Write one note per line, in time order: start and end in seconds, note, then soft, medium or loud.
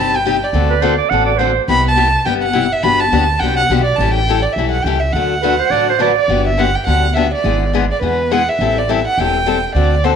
0.00 0.42 G1 medium
0.00 0.14 C3 medium
0.00 0.15 G3 medium
0.00 0.15 C4 medium
0.00 0.15 D#4 medium
0.00 0.15 G4 medium
0.00 0.17 A5 loud
0.16 0.45 G5 medium
0.25 0.35 C3 medium
0.25 0.36 G3 medium
0.25 0.36 C4 medium
0.25 0.36 D#4 medium
0.25 0.36 G4 loud
0.44 1.00 D5 medium
0.53 0.99 D2 medium
0.53 0.72 D3 medium
0.53 0.73 A3 medium
0.53 0.73 C4 medium
0.53 0.73 F#4 medium
0.53 0.73 A4 medium
0.70 0.82 B4 medium
0.81 0.93 D3 medium
0.81 0.93 A3 medium
0.81 0.93 C4 medium
0.81 0.93 F#4 medium
0.81 0.93 A4 medium
0.81 0.97 C5 medium
0.98 1.11 D5 medium
1.10 1.57 A1 medium
1.10 1.30 D3 medium
1.10 1.31 A3 medium
1.10 1.31 C4 medium
1.10 1.31 F#4 medium
1.10 1.31 A4 medium
1.10 1.25 F#5 loud
1.26 1.37 D5 medium
1.35 1.50 D3 medium
1.35 1.50 A3 medium
1.35 1.40 B4 medium
1.35 1.62 C5 medium
1.40 1.50 C4 medium
1.40 1.50 F#4 medium
1.40 1.51 A4 medium
1.68 2.14 C2 medium
1.68 1.88 C3 medium
1.68 1.88 G3 medium
1.68 1.88 B3 medium
1.68 1.88 E4 medium
1.68 1.88 G4 medium
1.68 1.84 B5 medium
1.88 2.25 A5 medium
1.96 2.07 C3 medium
1.96 2.08 G3 medium
1.96 2.08 B3 medium
1.96 2.08 E4 medium
1.96 2.08 G4 loud
2.25 2.72 G1 medium
2.25 2.45 C3 medium
2.25 2.45 G3 medium
2.25 2.45 B3 medium
2.25 2.45 E4 medium
2.25 2.45 G4 medium
2.25 2.34 G5 medium
2.43 2.74 F#5 medium
2.53 2.65 C3 medium
2.53 2.65 G3 medium
2.53 2.65 B3 medium
2.53 2.65 E4 medium
2.53 2.65 G4 medium
2.73 2.85 E5 medium
2.83 3.07 G1 medium
2.83 3.02 D3 medium
2.83 3.03 F#3 medium
2.83 3.03 B3 medium
2.83 3.03 D4 medium
2.83 3.03 G4 medium
2.83 3.01 B5 loud
3.00 3.40 A5 medium
3.12 3.37 D2 medium
3.12 3.23 D3 medium
3.12 3.23 F#3 medium
3.12 3.23 B3 medium
3.12 3.23 D4 medium
3.12 3.24 G4 medium
3.39 3.65 C2 medium
3.39 3.61 D3 medium
3.39 3.61 F#3 medium
3.39 3.41 F#5 medium
3.39 3.56 G5 medium
3.43 3.61 B3 medium
3.43 3.61 D4 medium
3.43 3.61 G4 medium
3.56 3.83 F#5 medium
3.70 3.94 B1 medium
3.70 3.81 D3 medium
3.70 3.81 F#3 medium
3.70 3.81 B3 medium
3.70 3.81 D4 medium
3.70 3.81 G4 medium
3.84 3.98 D5 medium
3.96 4.44 A1 medium
3.96 4.18 E3 medium
3.96 4.19 C#4 medium
3.96 4.14 A5 medium
4.00 4.19 G3 medium
4.00 4.19 E4 medium
4.00 4.19 A4 medium
4.14 4.44 G5 medium
4.29 4.39 E3 medium
4.29 4.39 G3 medium
4.29 4.39 C#4 medium
4.29 4.39 E4 medium
4.29 4.39 A4 medium
4.42 4.54 D5 medium
4.53 4.81 B1 medium
4.53 4.70 E5 medium
4.58 4.76 E3 medium
4.58 4.76 G3 medium
4.58 4.77 C#4 medium
4.58 4.76 E4 medium
4.58 4.77 A4 medium
4.71 4.84 F#5 medium
4.82 5.09 C#2 medium
4.82 4.96 E3 medium
4.82 5.01 G5 medium
4.87 4.97 G3 medium
4.87 4.97 C#4 medium
4.87 4.96 E4 medium
4.87 4.97 A4 medium
5.00 5.14 E5 medium
5.12 5.59 D2 medium
5.12 5.33 D3 medium
5.12 5.34 F#3 medium
5.12 5.34 A3 medium
5.12 5.34 D4 medium
5.12 5.99 F#5 medium
5.17 5.34 F#4 medium
5.42 5.53 D3 medium
5.42 5.54 F#3 medium
5.42 5.54 A3 medium
5.42 5.54 D4 medium
5.42 5.54 F#4 medium
5.42 5.61 B4 medium
5.59 5.73 C5 medium
5.70 6.17 A1 medium
5.70 5.91 D3 medium
5.70 5.91 F#3 medium
5.70 5.91 A3 medium
5.70 5.91 D4 medium
5.70 5.91 F#4 medium
5.70 5.88 D5 medium
5.89 6.00 C5 medium
5.99 6.10 D3 medium
5.99 6.10 F#3 medium
5.99 6.11 A3 medium
5.99 6.11 D4 medium
5.99 6.11 F#4 medium
5.99 6.16 B4 medium
5.99 6.28 D5 medium
6.18 6.44 D5 medium
6.28 6.74 G1 medium
6.28 6.48 D3 medium
6.28 6.48 F#3 medium
6.28 6.48 B3 medium
6.28 6.48 D4 medium
6.28 6.49 G4 medium
6.47 6.60 E5 medium
6.57 6.68 D3 medium
6.57 6.69 F#3 medium
6.57 6.69 B3 medium
6.57 6.69 D4 medium
6.57 6.69 G4 medium
6.57 6.77 F#5 medium
6.75 6.86 G5 medium
6.86 7.33 D2 medium
6.86 7.05 D3 medium
6.86 7.06 F#3 medium
6.86 7.06 B3 medium
6.86 7.06 D4 medium
6.86 7.06 G4 medium
6.86 7.13 F#5 medium
7.15 7.26 D3 medium
7.15 7.26 F#3 medium
7.15 7.27 B3 medium
7.15 7.27 D4 medium
7.15 7.26 G4 medium
7.15 7.31 E5 medium
7.34 7.71 D5 medium
7.44 7.90 G#1 medium
7.44 7.63 D3 medium
7.44 7.63 G#3 medium
7.44 7.64 B3 medium
7.44 7.64 E4 medium
7.44 7.64 G#4 medium
7.73 7.84 D3 medium
7.73 7.84 G#3 medium
7.73 7.84 B3 medium
7.73 7.84 E4 medium
7.73 7.84 G#4 medium
7.91 8.02 D5 medium
8.01 8.47 E2 medium
8.01 8.21 D3 medium
8.01 8.21 G#3 medium
8.01 8.21 B3 medium
8.01 8.21 E4 medium
8.01 8.21 G#4 medium
8.01 8.33 B4 medium
8.31 8.41 D3 medium
8.31 8.41 G#3 medium
8.31 8.41 B3 medium
8.31 8.42 E4 medium
8.31 8.42 G#4 medium
8.31 8.50 F#5 medium
8.49 8.79 E5 medium
8.59 9.05 A1 medium
8.59 8.79 E3 medium
8.59 8.79 G3 medium
8.59 8.79 C4 medium
8.59 8.79 E4 medium
8.59 8.79 A4 medium
8.78 8.91 D5 medium
8.89 8.99 E3 medium
8.89 8.99 G3 medium
8.89 8.99 C4 medium
8.89 8.99 E4 medium
8.89 8.99 A4 medium
8.89 9.06 E5 medium
9.07 9.20 F#5 medium
9.18 9.63 E1 medium
9.18 9.37 E3 medium
9.18 9.37 G3 medium
9.18 9.37 C4 medium
9.18 9.37 E4 medium
9.18 9.37 A4 medium
9.18 9.75 G5 loud
9.46 9.56 E3 medium
9.46 9.56 G3 medium
9.46 9.57 C4 medium
9.46 9.57 E4 medium
9.46 9.57 A4 medium
9.75 10.16 D2 medium
9.75 9.94 D3 medium
9.75 9.94 A3 medium
9.75 9.94 C4 medium
9.75 9.94 F#4 medium
9.75 9.94 A4 medium
9.75 10.05 D5 medium
10.04 10.14 D3 medium
10.04 10.14 A3 medium
10.04 10.14 C4 medium
10.04 10.14 F#4 medium
10.04 10.15 A4 medium
10.04 10.16 C5 medium